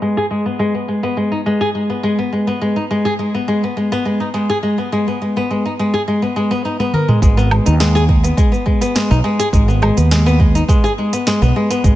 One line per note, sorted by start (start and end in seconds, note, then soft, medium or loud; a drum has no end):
0.02 0.16 G#3 medium
0.17 0.25 G#4 medium
0.31 0.44 G#3 medium
0.46 0.59 B3 medium
0.59 0.73 G#3 medium
0.75 0.88 B3 medium
0.88 1.02 G#3 medium
1.03 1.16 B3 medium
1.17 1.30 G#3 medium
1.32 1.40 D#4 medium
1.46 1.60 G#3 medium
1.61 1.69 G#4 medium
1.75 1.88 G#3 medium
1.90 2.03 B3 medium
2.03 2.17 G#3 medium
2.19 2.32 B3 medium
2.33 2.47 G#3 medium
2.47 2.60 B3 medium
2.62 2.75 G#3 medium
2.76 2.84 D#4 medium
2.91 3.05 G#3 medium
3.05 3.13 G#4 medium
3.19 3.32 G#3 medium
3.34 3.47 B3 medium
3.48 3.61 G#3 medium
3.64 3.76 B3 medium
3.77 3.91 G#3 medium
3.92 4.05 B3 medium
4.05 4.19 G#3 medium
4.20 4.28 D#4 medium
4.34 4.48 G#3 medium
4.50 4.57 G#4 medium
4.63 4.76 G#3 medium
4.78 4.91 B3 medium
4.92 5.06 G#3 medium
5.08 5.20 B3 medium
5.22 5.35 G#3 medium
5.37 5.49 B3 medium
5.51 5.64 G#3 medium
5.66 5.73 D#4 medium
5.79 5.93 G#3 medium
5.94 6.01 G#4 medium
6.08 6.21 G#3 medium
6.22 6.35 B3 medium
6.36 6.50 G#3 medium
6.51 6.63 B3 medium
6.65 6.79 D#4 medium
6.80 6.93 B3 medium
6.80 high tom soft
6.93 7.08 A#4 medium
6.93 mid tom medium
7.08 7.21 G#3 medium
7.08 mid tom medium
7.22 7.58 G#1 loud
7.22 7.37 G#3 medium
7.22 kick loud
7.22 closed hi-hat soft
7.22 cabasa medium
7.37 7.51 B3 loud
7.37 cabasa soft
7.51 7.65 G#3 medium
7.51 low woodblock medium
7.66 8.31 D#2 medium
7.66 7.74 D#4 medium
7.66 closed hi-hat medium
7.66 cabasa medium
7.80 7.94 G#3 medium
7.80 snare loud
7.80 closed hi-hat soft
7.80 cabasa medium
7.95 8.03 G#4 loud
7.95 cabasa soft
8.09 8.23 G#3 medium
8.09 kick loud
8.24 8.37 B3 medium
8.24 closed hi-hat medium
8.24 cabasa medium
8.37 8.51 G#3 medium
8.37 kick loud
8.37 closed hi-hat soft
8.37 cabasa medium
8.52 8.66 B3 medium
8.52 cabasa soft
8.66 8.81 G#3 medium
8.66 kick medium
8.81 8.95 B3 loud
8.81 closed hi-hat medium
8.81 cabasa medium
8.95 9.09 G#3 medium
8.95 snare loud
8.95 closed hi-hat soft
8.95 cabasa medium
9.11 9.20 B1 loud
9.11 9.19 D#4 medium
9.11 cabasa soft
9.24 9.39 G#3 loud
9.39 9.47 G#4 loud
9.39 closed hi-hat medium
9.39 cabasa medium
9.53 9.89 G#1 loud
9.53 9.67 G#3 medium
9.53 kick loud
9.53 closed hi-hat soft
9.53 cabasa medium
9.68 9.81 B3 medium
9.68 cabasa soft
9.82 9.96 G#3 loud
9.82 low woodblock medium
9.97 10.61 D#2 medium
9.97 10.10 B3 medium
9.97 closed hi-hat medium
9.97 cabasa medium
10.11 10.26 G#3 medium
10.11 snare loud
10.11 closed hi-hat soft
10.11 cabasa medium
10.26 10.39 B3 loud
10.26 cabasa soft
10.40 10.53 G#3 medium
10.40 kick loud
10.55 10.63 D#4 medium
10.55 closed hi-hat medium
10.55 cabasa medium
10.69 10.83 G#3 loud
10.69 kick loud
10.69 closed hi-hat soft
10.69 cabasa medium
10.84 10.92 G#4 loud
10.84 cabasa soft
10.98 11.11 G#3 medium
11.13 11.26 B3 medium
11.13 closed hi-hat medium
11.13 cabasa medium
11.27 11.40 G#3 loud
11.27 snare loud
11.27 closed hi-hat soft
11.27 cabasa medium
11.42 11.51 B1 loud
11.42 11.55 B3 medium
11.42 cabasa soft
11.56 11.70 G#3 medium
11.70 11.84 B3 medium
11.70 closed hi-hat medium
11.70 cabasa medium
11.84 11.96 G#1 loud
11.84 11.96 G#3 medium
11.84 kick loud
11.84 closed hi-hat soft
11.84 cabasa medium